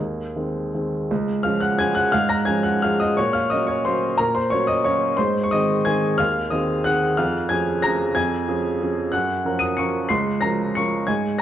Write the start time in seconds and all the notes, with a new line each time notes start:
Already playing: G#4
0.00 D#2
0.36 D#3 G#3 C4
0.75 D#3 G#3 C4
1.11 C#2
1.43 F3 G#3 C#4 F5 F6
1.60 F#5 F#6
1.79 F3 G#3 C#4 G#5 G#6
1.95 F#5 F#6
2.12 G#2 F5 F6
2.29 A#5 A#6
2.45 F3 G#3 C#4 G#5 G#6
2.63 F#5 F#6
2.82 F3 G#3 C#4 F5 F6
3.00 D#5 D#6
3.17 A#2 C#5 C#6
3.33 F5 F6
3.50 F#3 A#3 C#4 D#5 D#6
3.67 C#5 C#6
3.85 F#3 A#3 C#4 C5 C6
4.18 A#2 A#4 A#5
4.35 C5 C6
4.50 F#3 A#3 C#4 C#5 C#6
4.67 D#5 D#6
4.84 F#3 A#3 C#4 C#5 C#6
5.17 G#2 C5 C6
5.43 C#6
5.51 D#3 C4 G#4 D#5 D#6
5.85 D#3 C4 G#4 G#5 G#6
6.18 D#2 F5 F6
6.50 D#3 C4 G#4 D#5 D#6
6.84 D#3 C4 G#4 F#5 F#6
7.17 F2 F5 F6
7.49 F3 C#4 G#4 G#5 G#6
7.82 F3 C#4 G#4 A#5 A#6
8.15 F2 G#5 G#6
8.48 F3 C#4 G#4
8.81 F3 C#4 G#4
9.12 F#2 F#5 F#6
9.45 F3 C#4 A#4
9.59 D#6 D#7
9.77 F3 C#4 A#4 C#6 C#7
10.09 C#2 C6 C7
10.41 F3 C#4 A#4 A#5 A#6
10.75 F3 C#4 A#4 C#6 C#7
11.07 G#2 G#5 G#6
11.39 A#6